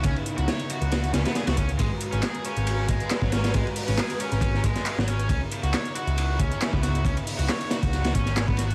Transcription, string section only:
X:1
M:4/4
L:1/8
Q:"Swing 16ths" 1/4=137
K:C#dor
V:1 name="String section"
[C,B,DE]8 | [G,FAB]8- | [G,FAB]8 | [C,B,DE]8- |
[C,B,DE]8 |]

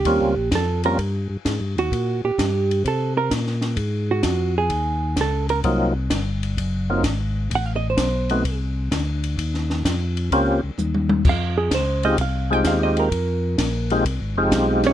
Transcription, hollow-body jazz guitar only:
X:1
M:4/4
L:1/16
Q:"Swing" 1/4=129
K:Ebmix
V:1 name="Hollow-body jazz guitar"
G4 =A2 B2 z6 _G2- | _G2 =G6 =A2 B2 z4 | z2 _G4 A6 =A2 B2 | z16 |
^f =f e c6 z6 z | z16 | f2 A2 c2 e2 f2 g2 (3f2 e2 B2- | B8- B z4 z [Dd]2 |]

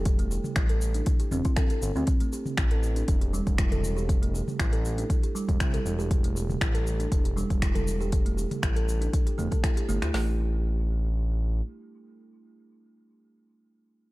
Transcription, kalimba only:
X:1
M:4/4
L:1/16
Q:"Swing 16ths" 1/4=119
K:Am
V:1 name="Kalimba"
z A, G z E A z D z G C E A A z C | z A, G z E A z D z G G, z E A z G | z A, G z E A z D z G G, z E A z G | z A, G z E A z D z G G, z E A z G |
z A, G z E A z D z G A, A E G A, E | A,2 z12 z2 | z16 |]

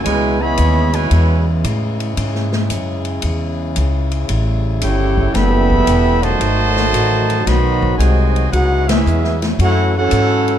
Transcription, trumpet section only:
X:1
M:4/4
L:1/8
Q:"Swing" 1/4=113
K:C#m
V:1 name="Trumpet section"
[EBcg] [Gceb]2 [EBcg]2 z3 | z8 | z2 [EAc=g]2 [Aegb]3 [F^Bda]- | [F^Bda]4 [FBd=b]2 [F^Bdg]2 |
[DGBf] [CGBe]2 z [EAcf] [EAcf]3 |]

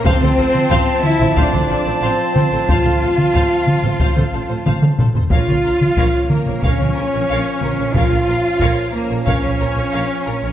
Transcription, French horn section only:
X:1
M:4/4
L:1/8
Q:1/4=91
K:F
V:1 name="French horn section"
C3 E D2 C2 | F6 z2 | F3 B, _D4 | F3 B, _D4 |]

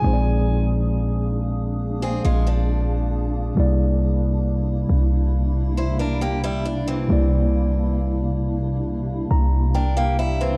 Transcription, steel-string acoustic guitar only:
X:1
M:4/4
L:1/16
Q:1/4=68
K:Cm
V:1 name="Steel-string acoustic guitar"
z8 z [CA] [A,F] [F,D]4- [F,D] | z8 z2 [=Ec] [DB] [B,G] [G,E] D [=E,C]- | [=E,C]4- [E,C] z6 z [DB] [B,G] [G,=E] [E,C] |]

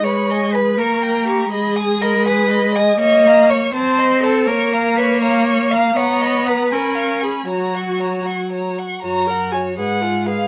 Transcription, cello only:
X:1
M:6/8
L:1/8
Q:3/8=81
K:F#
V:1 name="Cello"
c2 B _B2 =G | G2 A B2 d | d2 c =c2 =A | A2 B c2 e |
c2 B A2 G | F3 z3 | F,,3 _A,,3 |]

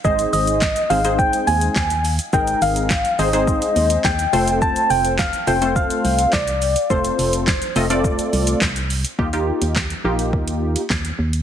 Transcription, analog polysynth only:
X:1
M:4/4
L:1/16
Q:1/4=105
K:Eb
V:1 name="Analog polysynth"
[A,CEAc]4 z2 [A,CEAc] [A,CEAc]4- [A,CEAc] z4 | [A,CEAB]4 z2 [A,CEAc] [A,CEAc]4- [A,CEAc] z2 [=A,CF=Ac]2- | [=A,CF=Ac]4 z2 [A,CFAc] [A,CFAc]4- [A,CFAc] z4 | [=A,CF=Ac]4 z2 [A,CFAe] [A,CFAd]4- [A,CFAd] z4 |
[B,EFG] [B,EFG]3 z2 [B,EFG]4- [B,EFG] z4 z |]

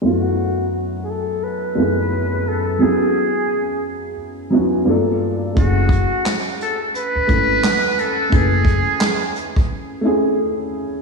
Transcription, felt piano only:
X:1
M:4/4
L:1/8
Q:"Swing 16ths" 1/4=87
K:F#m
V:1 name="Felt piano"
[F,,A,B,EF]4 z [F,,A,B,EG]3 | [F,B,CEG]4 z [F,B,CEF] [=G,,_B,D=FA]2 | [A,CEG]4 z [A,CEB]3 | [A,CEB]4 z [A,CEG]3 |]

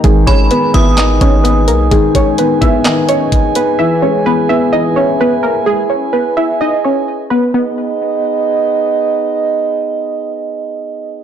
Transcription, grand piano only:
X:1
M:4/4
L:1/8
Q:1/4=128
K:G#m
V:1 name="Grand piano" clef=bass
D, G, D, B, D, D3 | D, G, D, B, D, D3 | E, G, E, B, E, E3- | E2 z6 |
z8 | z8 |]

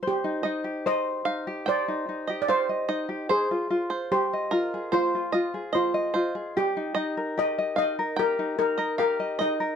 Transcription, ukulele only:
X:1
M:4/4
L:1/16
Q:1/4=74
K:Cm
V:1 name="Ukulele"
c E E G c2 E G c E E G c e E G | c F F2 c e F A c F F A c e F A | G E E B G e E B G E E B G e E B |]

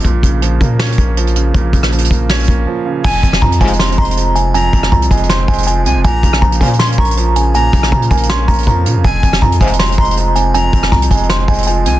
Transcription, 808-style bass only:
X:1
M:4/4
L:1/16
Q:1/4=160
K:Fm
V:1 name="808-style bass" clef=bass
B,,,2 B,,,4 B,,4 B,,,6 | B,,,2 B,,,4 B,,,4 B,,,2 z4 | F,,,2 F,,,2 F,,2 F,,,4 F,,,6- | F,,,2 F,,,2 C,,2 F,,,4 F,,,4 C,, F,,, |
B,,,2 B,,,2 B,,,2 B,,4 B,,,6- | B,,,2 B,,,2 B,,2 B,,,4 B,,,2 F,,2 B,, F,, | F,,,2 F,,,2 F,,2 F,,,4 F,,,6- | F,,,2 F,,,2 C,,2 F,,,4 F,,,4 C,, F,,, |]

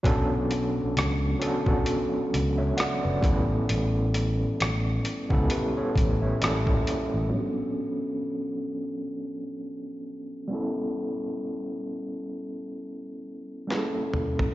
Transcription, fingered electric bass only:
X:1
M:4/4
L:1/16
Q:"Swing 16ths" 1/4=66
K:Bm
V:1 name="Fingered electric bass" clef=bass
B,,,4 C,,2 z B,,, z2 C,,2 z F,,, A,,,2 | A,,,4 A,,,2 z C,, z2 A,,,2 A,,,2 z A,,, | z16 | z16 |]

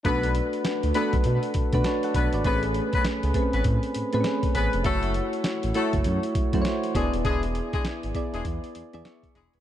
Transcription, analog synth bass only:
X:1
M:4/4
L:1/16
Q:"Swing 16ths" 1/4=100
K:Bdor
V:1 name="Analog synth bass" clef=bass
B,,,3 z2 D,, z B,,, B,, z B,, B,, z2 B,,, G,,, | A,,,3 z2 C,, z A,,, A,, z A,, A,, z2 A,,, =F,,, | F,,,3 z2 A,,, z F,,, F,, z F,, F,, z2 E,,, ^D,,, | E,,,3 z2 G,,, z E,,, E,, z E,, E,, z2 E,,, ^D,,, |]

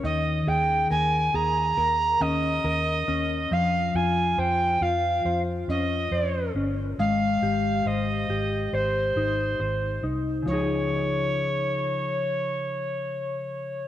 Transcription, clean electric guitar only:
X:1
M:4/4
L:1/8
Q:1/4=69
K:Dblyd
V:1 name="Clean electric guitar"
E, A B A B D B D | F, F c F c D c D | A, G c G c E c E | [D,F,EA]8 |]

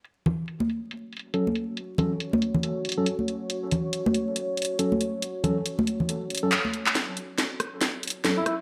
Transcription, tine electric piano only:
X:1
M:4/4
L:1/16
Q:"Swing 16ths" 1/4=139
K:F#m
V:1 name="Tine electric piano"
z12 [F,CA] z3 | z2 [F,CA] z8 [F,CA] z4 | z12 [F,CA] z3 | z2 [F,CA] z8 [F,CA] z4 |
z12 [F,CA] z3 |]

